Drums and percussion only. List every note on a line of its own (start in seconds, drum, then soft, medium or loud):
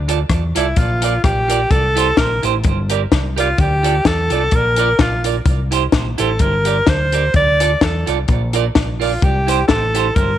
0.09 closed hi-hat medium
0.29 kick medium
0.29 cross-stick loud
0.29 closed hi-hat medium
0.56 closed hi-hat medium
0.76 kick loud
0.76 closed hi-hat medium
1.02 closed hi-hat medium
1.24 kick loud
1.24 cross-stick loud
1.24 closed hi-hat medium
1.50 closed hi-hat medium
1.71 kick loud
1.71 closed hi-hat medium
1.97 closed hi-hat loud
2.17 kick medium
2.17 snare loud
2.17 closed hi-hat medium
2.43 closed hi-hat medium
2.64 kick loud
2.64 closed hi-hat medium
2.90 closed hi-hat medium
3.12 kick loud
3.12 snare loud
3.12 closed hi-hat medium
3.38 closed hi-hat medium
3.58 kick loud
3.58 closed hi-hat medium
3.84 closed hi-hat medium
4.05 kick medium
4.05 snare loud
4.05 closed hi-hat medium
4.30 closed hi-hat medium
4.51 kick loud
4.51 closed hi-hat medium
4.76 closed hi-hat medium
4.99 kick loud
4.99 snare loud
4.99 closed hi-hat medium
5.24 closed hi-hat loud
5.46 kick loud
5.46 closed hi-hat medium
5.72 closed hi-hat medium
5.92 kick medium
5.92 snare loud
5.92 closed hi-hat medium
6.18 closed hi-hat medium
6.39 kick loud
6.39 closed hi-hat medium
6.65 closed hi-hat medium
6.87 kick loud
6.87 snare loud
6.87 closed hi-hat medium
7.12 closed hi-hat medium
7.34 kick loud
7.34 closed hi-hat medium
7.60 closed hi-hat loud
7.81 kick medium
7.81 snare loud
7.81 closed hi-hat medium
8.07 closed hi-hat medium
8.28 kick loud
8.28 closed hi-hat medium
8.53 closed hi-hat medium
8.75 kick loud
8.75 snare loud
8.75 closed hi-hat medium
9.01 open hi-hat medium
9.22 kick loud
9.22 closed hi-hat medium
9.48 closed hi-hat loud
9.69 kick medium
9.69 snare loud
9.69 closed hi-hat medium
9.95 closed hi-hat medium
10.16 kick loud
10.16 closed hi-hat medium